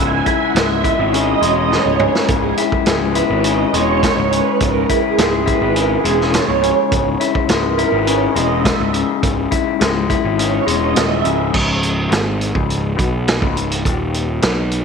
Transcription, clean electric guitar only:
0, 0, Header, 1, 2, 480
1, 0, Start_track
1, 0, Key_signature, 4, "minor"
1, 0, Tempo, 578035
1, 1905, Time_signature, 4, 2, 24, 8
1, 12327, End_track
2, 0, Start_track
2, 0, Title_t, "Clean electric guitar"
2, 0, Program_c, 0, 27
2, 0, Note_on_c, 0, 37, 73
2, 0, Note_on_c, 0, 44, 71
2, 0, Note_on_c, 0, 49, 67
2, 0, Note_on_c, 0, 56, 67
2, 0, Note_on_c, 0, 64, 74
2, 212, Note_off_c, 0, 64, 0
2, 215, Note_on_c, 0, 64, 73
2, 462, Note_off_c, 0, 56, 0
2, 466, Note_on_c, 0, 56, 70
2, 692, Note_off_c, 0, 64, 0
2, 695, Note_on_c, 0, 64, 71
2, 700, Note_off_c, 0, 44, 0
2, 932, Note_off_c, 0, 49, 0
2, 936, Note_on_c, 0, 49, 73
2, 1168, Note_off_c, 0, 56, 0
2, 1171, Note_on_c, 0, 56, 68
2, 1415, Note_on_c, 0, 44, 66
2, 1658, Note_off_c, 0, 49, 0
2, 1662, Note_on_c, 0, 49, 67
2, 1897, Note_off_c, 0, 37, 0
2, 1900, Note_on_c, 0, 37, 68
2, 2140, Note_off_c, 0, 64, 0
2, 2143, Note_on_c, 0, 64, 72
2, 2385, Note_off_c, 0, 56, 0
2, 2389, Note_on_c, 0, 56, 69
2, 2617, Note_off_c, 0, 64, 0
2, 2620, Note_off_c, 0, 44, 0
2, 2621, Note_on_c, 0, 64, 78
2, 2859, Note_off_c, 0, 49, 0
2, 2862, Note_on_c, 0, 49, 73
2, 3106, Note_off_c, 0, 56, 0
2, 3110, Note_on_c, 0, 56, 66
2, 3343, Note_on_c, 0, 44, 70
2, 3572, Note_off_c, 0, 49, 0
2, 3576, Note_on_c, 0, 49, 66
2, 3823, Note_off_c, 0, 37, 0
2, 3827, Note_on_c, 0, 37, 68
2, 4063, Note_off_c, 0, 64, 0
2, 4067, Note_on_c, 0, 64, 80
2, 4301, Note_off_c, 0, 56, 0
2, 4304, Note_on_c, 0, 56, 65
2, 4530, Note_off_c, 0, 64, 0
2, 4533, Note_on_c, 0, 64, 79
2, 4544, Note_off_c, 0, 44, 0
2, 4770, Note_off_c, 0, 49, 0
2, 4774, Note_on_c, 0, 49, 71
2, 5011, Note_off_c, 0, 56, 0
2, 5014, Note_on_c, 0, 56, 68
2, 5259, Note_on_c, 0, 44, 68
2, 5494, Note_off_c, 0, 49, 0
2, 5497, Note_on_c, 0, 49, 70
2, 5734, Note_off_c, 0, 37, 0
2, 5737, Note_on_c, 0, 37, 72
2, 5976, Note_off_c, 0, 64, 0
2, 5980, Note_on_c, 0, 64, 72
2, 6217, Note_off_c, 0, 56, 0
2, 6221, Note_on_c, 0, 56, 66
2, 6456, Note_off_c, 0, 64, 0
2, 6460, Note_on_c, 0, 64, 76
2, 6462, Note_off_c, 0, 44, 0
2, 6690, Note_off_c, 0, 49, 0
2, 6694, Note_on_c, 0, 49, 77
2, 6931, Note_off_c, 0, 56, 0
2, 6935, Note_on_c, 0, 56, 64
2, 7176, Note_on_c, 0, 44, 75
2, 7405, Note_off_c, 0, 49, 0
2, 7415, Note_on_c, 0, 49, 72
2, 7646, Note_off_c, 0, 37, 0
2, 7649, Note_on_c, 0, 37, 73
2, 7896, Note_off_c, 0, 64, 0
2, 7899, Note_on_c, 0, 64, 80
2, 8127, Note_off_c, 0, 56, 0
2, 8137, Note_on_c, 0, 56, 71
2, 8376, Note_off_c, 0, 64, 0
2, 8380, Note_off_c, 0, 44, 0
2, 8386, Note_on_c, 0, 64, 83
2, 8610, Note_off_c, 0, 49, 0
2, 8620, Note_on_c, 0, 49, 72
2, 8845, Note_off_c, 0, 56, 0
2, 8855, Note_on_c, 0, 56, 66
2, 8856, Note_off_c, 0, 37, 0
2, 9096, Note_on_c, 0, 44, 72
2, 9333, Note_off_c, 0, 49, 0
2, 9342, Note_on_c, 0, 49, 69
2, 9570, Note_on_c, 0, 37, 92
2, 9579, Note_off_c, 0, 56, 0
2, 9580, Note_off_c, 0, 44, 0
2, 9583, Note_off_c, 0, 49, 0
2, 9584, Note_off_c, 0, 64, 0
2, 10049, Note_off_c, 0, 37, 0
2, 10057, Note_on_c, 0, 44, 95
2, 10408, Note_off_c, 0, 44, 0
2, 10412, Note_on_c, 0, 37, 90
2, 10764, Note_off_c, 0, 37, 0
2, 10768, Note_on_c, 0, 47, 97
2, 11128, Note_off_c, 0, 47, 0
2, 11140, Note_on_c, 0, 37, 99
2, 11494, Note_off_c, 0, 37, 0
2, 11500, Note_on_c, 0, 39, 97
2, 11972, Note_off_c, 0, 39, 0
2, 11975, Note_on_c, 0, 47, 99
2, 12327, Note_off_c, 0, 47, 0
2, 12327, End_track
0, 0, End_of_file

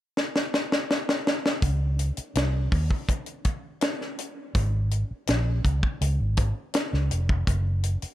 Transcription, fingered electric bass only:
0, 0, Header, 1, 3, 480
1, 0, Start_track
1, 0, Key_signature, -5, "major"
1, 0, Tempo, 731707
1, 1063, Time_signature, 4, 2, 24, 8
1, 5340, End_track
2, 0, Start_track
2, 0, Title_t, "Fingered electric bass"
2, 0, Program_c, 0, 33
2, 1066, Note_on_c, 0, 37, 91
2, 1375, Note_off_c, 0, 37, 0
2, 1545, Note_on_c, 0, 36, 81
2, 1751, Note_off_c, 0, 36, 0
2, 1787, Note_on_c, 0, 39, 77
2, 1889, Note_off_c, 0, 39, 0
2, 2986, Note_on_c, 0, 32, 89
2, 3295, Note_off_c, 0, 32, 0
2, 3468, Note_on_c, 0, 34, 84
2, 3673, Note_off_c, 0, 34, 0
2, 3708, Note_on_c, 0, 37, 75
2, 3809, Note_off_c, 0, 37, 0
2, 3943, Note_on_c, 0, 37, 95
2, 4047, Note_off_c, 0, 37, 0
2, 4066, Note_on_c, 0, 32, 79
2, 4272, Note_off_c, 0, 32, 0
2, 4547, Note_on_c, 0, 37, 88
2, 4649, Note_off_c, 0, 37, 0
2, 4666, Note_on_c, 0, 29, 75
2, 4872, Note_off_c, 0, 29, 0
2, 4907, Note_on_c, 0, 30, 96
2, 5215, Note_off_c, 0, 30, 0
2, 5340, End_track
3, 0, Start_track
3, 0, Title_t, "Muted fingered electric bass strokes"
3, 1429, Note_on_c, 9, 29, 41
3, 1494, Note_off_c, 9, 29, 0
3, 3351, Note_on_c, 9, 29, 43
3, 3416, Note_off_c, 9, 29, 0
3, 5266, Note_on_c, 9, 29, 43
3, 5332, Note_off_c, 9, 29, 0
3, 5340, End_track
0, 0, End_of_file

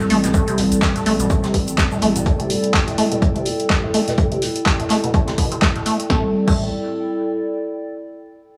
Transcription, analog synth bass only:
0, 0, Header, 1, 2, 480
1, 0, Start_track
1, 0, Key_signature, 0, "minor"
1, 0, Tempo, 480000
1, 340, Time_signature, 4, 2, 24, 8
1, 8571, End_track
2, 0, Start_track
2, 0, Title_t, "Analog synth bass"
2, 0, Program_c, 0, 38
2, 100, Note_on_c, 0, 33, 91
2, 307, Note_off_c, 0, 33, 0
2, 580, Note_on_c, 0, 33, 94
2, 695, Note_off_c, 0, 33, 0
2, 716, Note_on_c, 0, 33, 95
2, 913, Note_off_c, 0, 33, 0
2, 1060, Note_on_c, 0, 33, 90
2, 1175, Note_off_c, 0, 33, 0
2, 1197, Note_on_c, 0, 33, 83
2, 1393, Note_off_c, 0, 33, 0
2, 1541, Note_on_c, 0, 33, 86
2, 1748, Note_off_c, 0, 33, 0
2, 2020, Note_on_c, 0, 33, 88
2, 2227, Note_off_c, 0, 33, 0
2, 6099, Note_on_c, 0, 33, 100
2, 6246, Note_off_c, 0, 33, 0
2, 6476, Note_on_c, 0, 33, 99
2, 6700, Note_off_c, 0, 33, 0
2, 8571, End_track
0, 0, End_of_file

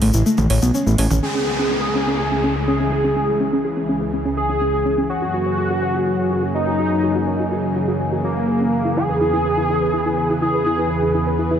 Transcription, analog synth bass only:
0, 0, Header, 1, 2, 480
1, 0, Start_track
1, 0, Key_signature, 4, "minor"
1, 0, Tempo, 483871
1, 1216, Time_signature, 4, 2, 24, 8
1, 11502, End_track
2, 0, Start_track
2, 0, Title_t, "Analog synth bass"
2, 0, Program_c, 0, 38
2, 15, Note_on_c, 0, 33, 96
2, 109, Note_off_c, 0, 33, 0
2, 137, Note_on_c, 0, 33, 91
2, 228, Note_off_c, 0, 33, 0
2, 376, Note_on_c, 0, 33, 86
2, 468, Note_off_c, 0, 33, 0
2, 495, Note_on_c, 0, 33, 98
2, 589, Note_off_c, 0, 33, 0
2, 617, Note_on_c, 0, 35, 93
2, 708, Note_off_c, 0, 35, 0
2, 856, Note_on_c, 0, 33, 89
2, 948, Note_off_c, 0, 33, 0
2, 976, Note_on_c, 0, 33, 97
2, 1069, Note_off_c, 0, 33, 0
2, 1097, Note_on_c, 0, 33, 89
2, 1189, Note_off_c, 0, 33, 0
2, 11502, End_track
0, 0, End_of_file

